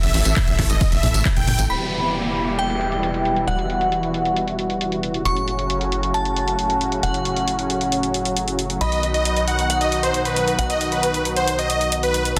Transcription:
Already playing: supersaw synth C3 E3 A3 E4 A4
0.03 analog synth bass A1, supersaw synth E5, open hi-hat, tambourine
0.14 analog synth bass A1, open hi-hat
0.25 analog synth bass A1, supersaw synth E5, closed hi-hat, tambourine
0.36 kick, clap, closed hi-hat, mid tom, ride
0.48 analog synth bass A1, closed hi-hat, tambourine
0.59 analog synth bass A1, kick, clap, open hi-hat
0.70 analog synth bass A1, supersaw synth D#5, closed hi-hat, tambourine
0.81 kick, closed hi-hat, ride, tambourine
0.92 analog synth bass A1, supersaw synth E5, closed hi-hat, tambourine
1.03 analog synth bass B1, open hi-hat, mid tom
1.09 closed hi-hat
1.14 analog synth bass A1, closed hi-hat, tambourine
1.25 kick, clap, closed hi-hat, ride
1.36 analog synth bass A1, supersaw synth G5, closed hi-hat, mid tom, tambourine
1.48 analog synth bass G1, open hi-hat, mid tom
1.59 analog synth bass A1, closed hi-hat, tambourine
1.70 analog synth bass E1, supersaw synth B2 E3 G3 E4 G4, synth bell B5, closed hi-hat, downlifter
1.81 closed hi-hat
1.92 closed hi-hat
2.03 closed hi-hat
2.14 closed hi-hat
2.25 closed hi-hat
2.36 closed hi-hat
2.48 closed hi-hat
2.59 synth bell G5, closed hi-hat
2.70 closed hi-hat
2.81 closed hi-hat
2.92 closed hi-hat
3.03 closed hi-hat
3.14 closed hi-hat
3.25 closed hi-hat
3.36 closed hi-hat
3.47 analog synth bass E1, supersaw synth F#4, synth bell F#5, closed hi-hat
3.59 closed hi-hat
3.70 closed hi-hat
3.81 closed hi-hat
3.92 closed hi-hat
4.03 closed hi-hat
4.14 closed hi-hat
4.25 closed hi-hat
4.36 closed hi-hat
4.48 closed hi-hat
4.59 closed hi-hat
4.70 closed hi-hat
4.81 closed hi-hat
4.92 closed hi-hat
5.03 closed hi-hat
5.14 closed hi-hat
5.25 analog synth bass F#1, supersaw synth A2 C#3 F#3 C#4, synth bell C#6, closed hi-hat
5.37 closed hi-hat
5.48 closed hi-hat
5.59 closed hi-hat
5.70 closed hi-hat
5.81 closed hi-hat
5.92 closed hi-hat
6.03 closed hi-hat
6.14 synth bell A5, closed hi-hat
6.25 closed hi-hat
6.36 closed hi-hat
6.48 closed hi-hat
6.59 closed hi-hat
6.70 closed hi-hat
6.81 closed hi-hat
6.92 closed hi-hat
7.03 analog synth bass F#1, synth bell F#5, closed hi-hat
7.14 closed hi-hat
7.25 closed hi-hat
7.37 closed hi-hat
7.48 closed hi-hat
7.59 closed hi-hat
7.70 closed hi-hat
7.81 closed hi-hat
7.92 closed hi-hat
8.03 closed hi-hat
8.14 closed hi-hat
8.25 closed hi-hat
8.37 closed hi-hat
8.48 closed hi-hat
8.59 closed hi-hat
8.70 closed hi-hat
8.81 analog synth bass B1, supersaw synth B2 D#3 D#4 F#4 D#5, synth bell B5, closed hi-hat
8.92 closed hi-hat
9.03 closed hi-hat
9.14 supersaw synth D#5, closed hi-hat
9.25 closed hi-hat
9.37 closed hi-hat
9.48 supersaw synth F#5, closed hi-hat
9.59 closed hi-hat
9.70 synth bell F#5, closed hi-hat
9.81 supersaw synth D#5, closed hi-hat
9.92 closed hi-hat
10.03 supersaw synth C5, closed hi-hat
10.14 closed hi-hat
10.25 supersaw synth B4, closed hi-hat
10.36 closed hi-hat
10.48 closed hi-hat
10.59 analog synth bass B1, synth bell F#5, closed hi-hat
10.70 supersaw synth D#5, closed hi-hat
10.81 closed hi-hat
10.92 supersaw synth B4, closed hi-hat
11.03 closed hi-hat
11.14 closed hi-hat
11.25 closed hi-hat
11.36 supersaw synth C5, closed hi-hat
11.48 closed hi-hat
11.59 supersaw synth D#5, closed hi-hat
11.70 closed hi-hat
11.81 closed hi-hat
11.92 closed hi-hat
12.03 supersaw synth B4, closed hi-hat
12.14 closed hi-hat
12.25 closed hi-hat

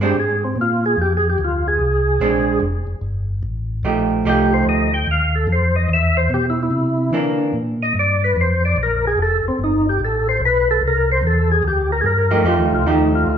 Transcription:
Already playing: tonewheel organ G2
0.01 hollow-body jazz guitar G#3 C4 D4, tonewheel organ G4
0.15 tonewheel organ G#2
0.20 tonewheel organ G#4
0.44 tonewheel organ C4
0.56 tonewheel organ A#2
0.61 tonewheel organ F4
0.86 tonewheel organ G#4
0.97 tonewheel organ F2
1.01 tonewheel organ G4
1.17 tonewheel organ G#4
1.30 tonewheel organ G4
1.38 tonewheel organ D2
1.44 tonewheel organ F4
1.68 tonewheel organ G#4
1.79 tonewheel organ C2
2.20 tonewheel organ A#1, hollow-body jazz guitar G#3 C4 D4
2.60 tonewheel organ F1
2.87 tonewheel organ F1
3.01 tonewheel organ G1
3.43 tonewheel organ A1
3.83 tonewheel organ A#1, hollow-body jazz guitar F3 A3 D#4 G4
4.24 tonewheel organ C2, hollow-body jazz guitar F3 A3 D#4 G4
4.30 tonewheel organ G4
4.54 tonewheel organ C5
4.65 tonewheel organ D2 D#5
4.94 tonewheel organ G5
5.07 tonewheel organ D#2
5.11 tonewheel organ F5
5.35 tonewheel organ A4
5.47 tonewheel organ F2
5.52 tonewheel organ C5
5.76 tonewheel organ D#5
5.89 tonewheel organ E2
5.93 tonewheel organ E5
6.17 tonewheel organ C5
6.29 tonewheel organ B2
6.34 tonewheel organ G4
6.50 tonewheel organ E4
6.63 tonewheel organ E4
6.71 tonewheel organ C3
7.12 tonewheel organ D3, hollow-body jazz guitar E3 A#3 D4
7.53 tonewheel organ A#2
7.83 tonewheel organ D#5
7.94 tonewheel organ G2
7.99 tonewheel organ D5
8.24 tonewheel organ B4
8.36 tonewheel organ F2
8.41 tonewheel organ C5
8.65 tonewheel organ D5
8.77 tonewheel organ A#1
8.83 tonewheel organ A#4
9.07 tonewheel organ G#4
9.17 tonewheel organ F1
9.22 tonewheel organ A4
9.43 tonewheel organ F1
9.48 tonewheel organ C4
9.59 tonewheel organ G1
9.64 tonewheel organ D#4
9.89 tonewheel organ G4
10.00 tonewheel organ A1
10.05 tonewheel organ A4
10.29 tonewheel organ C5
10.40 tonewheel organ B1
10.45 tonewheel organ B4
10.71 tonewheel organ A4
10.81 tonewheel organ C2
10.88 tonewheel organ A#4
11.11 tonewheel organ C5
11.21 tonewheel organ E2
11.27 tonewheel organ A4
11.52 tonewheel organ G#4
11.63 tonewheel organ D2
11.68 tonewheel organ G4
11.92 tonewheel organ A#4
12.01 tonewheel organ G2 G#4
12.06 tonewheel organ A#4
12.31 hollow-body jazz guitar F3 A3 D#4 G4
12.44 tonewheel organ F2, hollow-body jazz guitar F3 A3 D#4 G4
12.48 tonewheel organ F4
12.58 tonewheel organ D#2
12.72 tonewheel organ C2 F4
12.84 tonewheel organ D#2 D#4, hollow-body jazz guitar F3 A3 D#4 G4
13.15 tonewheel organ F4
13.26 tonewheel organ D2 F4

